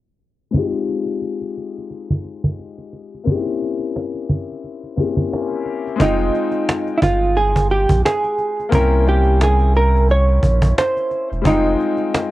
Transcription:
0.51 3.21 G#3 medium
0.51 3.22 C4 medium
0.51 3.23 D#4 medium
0.51 cajon bass loud
0.56 3.24 F4 medium
0.56 3.25 G4 medium
0.73 cajon slap soft
0.89 cajon slap soft
1.06 cajon slap soft
1.22 cajon slap soft
1.42 cajon slap soft
1.57 cajon slap soft
1.78 cajon slap soft
1.91 cajon slap soft
2.10 cajon bass medium
2.24 cajon slap soft
2.44 cajon bass medium
2.59 cajon slap soft
2.78 cajon slap soft
2.93 cajon slap soft
3.14 cajon slap soft
3.24 4.92 A#3 medium
3.24 4.93 C4 medium
3.24 4.94 C#4 medium
3.24 cajon bass medium
3.29 3.36 D#4 soft
3.29 4.96 G4 medium
3.36 4.97 E4 medium
3.46 cajon slap soft
3.62 cajon slap soft
3.79 cajon slap soft
3.96 cajon slap loud
4.14 cajon slap soft
4.29 cajon bass medium
4.51 cajon slap soft
4.64 cajon slap soft
4.83 cajon slap soft
4.96 5.99 A#3 medium
4.96 5.96 C4 soft
4.96 6.00 C#4 soft
4.96 6.00 E4 medium
4.96 6.01 G4 medium
4.96 cajon bass medium
5.17 cajon bass medium
5.33 cajon slap loud
5.51 cajon slap soft
5.66 cajon slap soft
5.87 cajon slap soft
5.96 8.66 G#3 medium
5.96 8.67 C4 medium
6.00 6.30 F1 loud
6.00 8.69 D#4 medium
6.00 6.97 D#4 medium
6.00 8.69 F4 medium
6.00 8.70 G5 medium
6.00 cajon bass loud
6.18 cajon slap soft
6.34 cajon slap soft
6.51 cajon slap soft
6.69 cajon slap loud
6.87 cajon slap soft
6.98 7.03 E4 medium
7.02 7.86 G1 medium
7.02 7.38 F4 medium
7.02 cajon bass loud
7.24 cajon slap soft
7.36 7.71 G#4 medium
7.36 cajon slap medium
7.56 cajon bass medium
7.70 8.05 G4 medium
7.70 cajon slap soft
7.89 8.03 A#1 medium
7.89 cajon bass medium
8.05 8.69 G#4 medium
8.05 cajon slap loud
8.24 cajon slap soft
8.38 cajon slap soft
8.60 cajon slap soft
8.69 10.39 C2 medium
8.69 11.39 A#3 medium
8.69 11.40 C4 medium
8.69 11.41 C#4 medium
8.69 cajon bass loud
8.74 11.42 E4 medium
8.74 9.05 A#4 medium
8.74 11.43 G5 medium
8.91 cajon slap soft
9.07 9.43 G4 medium
9.07 cajon slap soft
9.24 cajon slap soft
9.41 9.74 G#4 medium
9.41 cajon slap loud
9.59 cajon slap soft
9.75 10.07 A#4 loud
9.75 cajon slap soft
9.96 cajon slap soft
10.09 10.74 C#5 medium
10.09 cajon slap soft
10.28 cajon slap soft
10.43 10.73 A#1 loud
10.43 cajon bass medium
10.62 cajon bass medium
10.78 11.28 C5 medium
10.78 cajon slap loud
10.97 cajon slap soft
11.11 cajon slap soft
11.32 11.44 E1 medium
11.32 cajon slap soft
11.42 11.51 G3 soft
11.42 12.31 C4 medium
11.42 12.31 D#4 medium
11.42 cajon bass loud
11.46 11.75 F1 loud
11.46 12.31 G#3 medium
11.46 12.31 D#4 medium
11.46 12.31 F4 medium
11.46 12.31 G5 medium
11.64 cajon slap soft
11.80 cajon slap soft
11.97 cajon slap soft
12.15 cajon slap loud

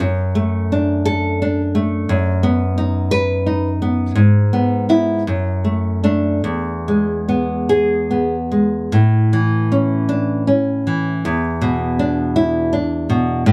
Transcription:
0.00 2.04 F#2 medium
0.35 1.40 A3 medium
0.72 1.41 D4 medium
1.05 1.61 A4 medium
1.42 2.09 D4 soft
1.75 2.09 A3 medium
2.09 4.13 F#2 medium
2.43 3.47 B3 medium
2.78 3.45 D#4 medium
3.11 3.67 B4 medium
3.46 4.17 D#4 soft
3.82 4.17 B3 soft
4.15 5.23 G#2 medium
4.53 4.88 B3 medium
4.89 5.23 B3 soft
4.89 5.23 E4 medium
5.27 6.41 F#2 medium
5.64 6.02 A3 soft
6.04 6.41 A3 soft
6.04 6.41 D4 medium
6.44 8.88 E2 medium
6.88 8.10 G#3 medium
7.28 8.09 B3 medium
7.69 8.34 G#4 medium
8.11 8.92 B3 soft
8.52 8.92 G#3 soft
8.92 11.19 A2 medium
9.33 10.48 E3 medium
9.72 10.46 C#4 medium
10.09 10.47 D4 medium
10.47 11.22 C#4 medium
10.87 11.23 E3 soft
11.25 13.45 E2 medium
11.62 12.74 B2 medium
11.99 12.71 D4 medium
12.36 12.74 E4 medium
12.73 13.47 D4 medium
13.10 13.46 B2 medium
13.46 13.53 A2 medium

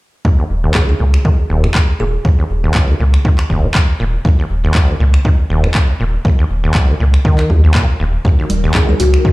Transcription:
0.25 0.29 D#2 medium
0.25 kick loud
0.39 0.45 D#2 medium
0.50 0.67 D#1 medium
0.64 0.73 D#2 medium
0.75 0.84 G#4 medium
0.75 kick loud
0.75 clap loud
0.89 0.95 D#2 medium
0.89 0.96 G#4 medium
1.00 1.17 C#2 medium
1.00 1.04 A#2 medium
1.14 finger snap medium
1.25 1.29 D#3 medium
1.25 kick loud
1.50 1.67 D#1 medium
1.50 1.65 D#2 medium
1.64 1.67 D#3 loud
1.64 finger snap medium
1.75 1.79 C#2 medium
1.75 kick loud
1.75 clap loud
2.00 2.17 D#1 medium
2.00 2.04 A#2 medium
2.00 2.70 G#4 medium
2.25 2.29 D#2 loud
2.25 kick loud
2.39 2.45 D#2 medium
2.50 2.67 D#1 loud
2.64 2.73 D#2 medium
2.75 2.90 C#2 medium
2.75 kick loud
2.75 clap loud
2.89 2.95 D#2 medium
3.00 3.17 C#2 medium
3.00 3.05 A#2 medium
3.14 finger snap medium
3.25 3.30 D#3 medium
3.25 kick loud
3.39 finger snap medium
3.39 clap soft
3.50 3.67 D#1 medium
3.50 3.65 D#2 medium
3.50 kick medium
3.64 3.68 D#3 medium
3.75 3.80 C#2 medium
3.75 kick loud
3.75 clap loud
4.00 4.17 D#1 medium
4.00 4.05 A#2 medium
4.25 4.30 D#2 loud
4.25 kick loud
4.39 4.45 D#2 medium
4.50 4.67 D#1 loud
4.64 4.73 D#2 medium
4.75 4.90 C#2 medium
4.75 kick loud
4.75 clap loud
4.89 4.95 D#2 medium
5.00 5.17 C#2 medium
5.00 5.05 A#2 medium
5.14 finger snap medium
5.25 5.30 D#3 medium
5.25 kick loud
5.50 5.67 D#1 medium
5.50 5.65 D#2 medium
5.64 5.68 D#3 loud
5.64 finger snap medium
5.75 5.80 C#2 medium
5.75 kick loud
5.75 clap loud
6.00 6.17 D#1 medium
6.00 6.05 A#2 medium
6.25 6.29 D#2 loud
6.25 kick loud
6.39 6.45 D#2 medium
6.50 6.67 D#1 loud
6.64 6.73 D#2 medium
6.75 kick loud
6.75 clap loud
6.89 6.95 D#2 medium
7.00 7.17 C#2 medium
7.00 7.05 A#2 medium
7.14 finger snap medium
7.25 7.51 D#3 medium
7.25 kick loud
7.39 finger snap medium
7.39 clap soft
7.50 7.61 D#2 medium
7.50 7.67 D#2 medium
7.50 kick medium
7.64 7.73 D#2 medium
7.75 7.86 A#2 medium
7.75 kick loud
7.75 clap loud
8.00 8.17 D#1 medium
8.00 8.05 D#2 medium
8.25 8.29 D#2 loud
8.25 9.33 F#3 medium
8.25 9.33 D#4 medium
8.25 9.33 A#4 medium
8.25 kick loud
8.39 8.45 D#2 medium
8.50 8.67 D#1 loud
8.50 open hi-hat loud
8.50 low conga loud
8.64 8.73 D#2 medium
8.74 8.90 C#2 medium
8.74 8.84 G#4 medium
8.74 kick loud
8.74 clap loud
8.89 8.95 D#2 medium
8.89 8.96 G#4 medium
8.89 low conga medium
9.00 9.17 C#2 medium
9.00 9.04 A#2 medium
9.00 9.33 F#4 medium
9.00 open hi-hat loud
9.14 finger snap medium
9.25 9.29 D#3 medium
9.25 kick loud

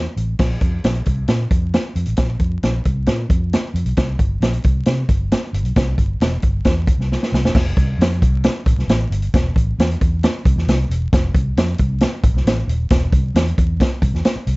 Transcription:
0.16 0.33 A1 medium
0.16 closed hi-hat medium
0.39 0.56 A#1 medium
0.39 kick medium
0.39 snare loud
0.39 crash medium
0.61 0.78 F2 medium
0.61 kick medium
0.61 closed hi-hat medium
0.84 1.01 A#1 loud
0.84 snare loud
0.84 closed hi-hat medium
0.95 closed hi-hat soft
1.06 1.23 C2 medium
1.06 kick medium
1.06 closed hi-hat medium
1.28 1.45 A#2 loud
1.28 snare loud
1.28 closed hi-hat medium
1.51 1.76 F2 medium
1.51 kick medium
1.51 closed hi-hat medium
1.74 snare loud
1.74 closed hi-hat medium
1.95 2.04 F2 medium
1.95 closed hi-hat medium
2.05 2.15 A1 medium
2.05 closed hi-hat medium
2.17 kick medium
2.17 snare loud
2.17 closed hi-hat loud
2.39 2.56 F2 medium
2.39 kick medium
2.39 closed hi-hat medium
2.63 2.79 A#1 medium
2.63 snare medium
2.63 closed hi-hat medium
2.85 3.09 C2 medium
2.85 kick medium
2.85 closed hi-hat medium
3.07 3.24 A#2 loud
3.07 snare loud
3.07 closed hi-hat medium
3.29 3.54 F2 medium
3.29 kick medium
3.29 closed hi-hat medium
3.53 snare loud
3.53 closed hi-hat medium
3.74 3.82 F2 medium
3.74 closed hi-hat medium
3.85 3.93 B1 medium
3.85 closed hi-hat medium
3.97 kick medium
3.97 snare loud
3.97 closed hi-hat loud
4.19 4.36 G1 medium
4.19 kick medium
4.19 closed hi-hat medium
4.40 4.57 A#1 medium
4.40 snare loud
4.40 closed hi-hat medium
4.53 closed hi-hat soft
4.64 4.81 C2 medium
4.64 kick medium
4.64 closed hi-hat medium
4.86 5.03 C3 loud
4.86 snare loud
4.86 closed hi-hat medium
5.09 5.34 G1 medium
5.09 kick medium
5.09 closed hi-hat medium
5.32 snare loud
5.32 closed hi-hat medium
5.53 5.61 G1 loud
5.53 closed hi-hat medium
5.63 5.72 B1 medium
5.63 closed hi-hat medium
5.76 5.92 C2 medium
5.76 kick loud
5.76 snare loud
5.76 closed hi-hat medium
5.98 6.14 G1 medium
5.98 kick medium
5.98 closed hi-hat medium
6.20 6.37 E1 medium
6.20 snare loud
6.20 closed hi-hat medium
6.42 6.59 G1 medium
6.42 kick medium
6.42 closed hi-hat medium
6.65 6.90 E2 loud
6.65 kick medium
6.65 snare loud
6.65 closed hi-hat medium
6.87 kick medium
6.87 closed hi-hat medium
6.98 7.15 C2 medium
6.98 snare soft
7.12 snare medium
7.23 snare medium
7.32 7.40 C2 loud
7.32 snare medium
7.42 7.51 E1 medium
7.42 snare medium
7.54 7.71 F1 loud
7.54 kick loud
7.54 snare loud
7.54 crash medium
7.77 7.93 C2 loud
7.77 kick medium
7.77 closed hi-hat medium
7.98 8.24 F2 loud
7.98 snare loud
7.98 closed hi-hat medium
8.12 closed hi-hat soft
8.22 8.47 C2 medium
8.22 kick medium
8.22 closed hi-hat medium
8.44 snare loud
8.44 closed hi-hat medium
8.66 8.74 A1 loud
8.66 kick medium
8.66 closed hi-hat medium
8.77 8.86 C2 medium
8.77 snare soft
8.88 9.04 A1 medium
8.88 snare loud
8.88 closed hi-hat medium
9.10 9.27 G1 medium
9.10 closed hi-hat medium
9.22 closed hi-hat medium
9.34 9.50 E1 loud
9.34 kick loud
9.34 snare loud
9.34 closed hi-hat loud
9.56 9.72 A1 medium
9.56 kick medium
9.56 closed hi-hat medium
9.79 9.95 E2 loud
9.79 snare loud
9.79 closed hi-hat medium
9.91 closed hi-hat soft
10.01 10.25 E2 loud
10.01 kick medium
10.01 closed hi-hat medium
10.23 snare loud
10.23 closed hi-hat medium
10.45 10.54 C2 loud
10.45 kick medium
10.45 closed hi-hat medium
10.56 10.64 E2 medium
10.56 snare soft
10.67 10.84 C2 loud
10.67 snare loud
10.67 closed hi-hat medium
10.89 11.06 E1 medium
10.89 closed hi-hat medium
11.13 11.29 F1 loud
11.13 kick loud
11.13 snare loud
11.13 closed hi-hat loud
11.34 11.51 C2 loud
11.34 kick loud
11.34 closed hi-hat medium
11.57 11.73 F2 loud
11.57 snare loud
11.57 closed hi-hat medium
11.68 closed hi-hat soft
11.78 12.04 C2 loud
11.78 kick medium
11.78 closed hi-hat medium
12.01 snare loud
12.01 closed hi-hat medium
12.24 12.32 A1 loud
12.24 kick medium
12.24 closed hi-hat medium
12.34 12.42 C2 medium
12.34 snare soft
12.45 12.62 A1 medium
12.45 snare loud
12.45 closed hi-hat medium
12.67 12.84 D#1 loud
12.67 closed hi-hat medium
12.90 13.07 E1 medium
12.90 kick loud
12.90 snare loud
12.90 closed hi-hat medium
13.12 13.29 C2 medium
13.12 kick medium
13.12 closed hi-hat medium
13.34 13.51 E2 loud
13.34 snare loud
13.34 closed hi-hat medium
13.47 closed hi-hat soft
13.58 13.83 E2 loud
13.58 kick medium
13.58 closed hi-hat medium
13.80 kick medium
13.80 snare loud
13.80 closed hi-hat medium
14.02 14.10 C2 loud
14.02 kick medium
14.02 closed hi-hat medium
14.13 14.21 E2 medium
14.13 snare soft
14.25 snare loud
14.25 closed hi-hat medium
14.35 muted fingered electric bass stroke medium
14.47 14.56 C2 loud
14.47 closed hi-hat medium

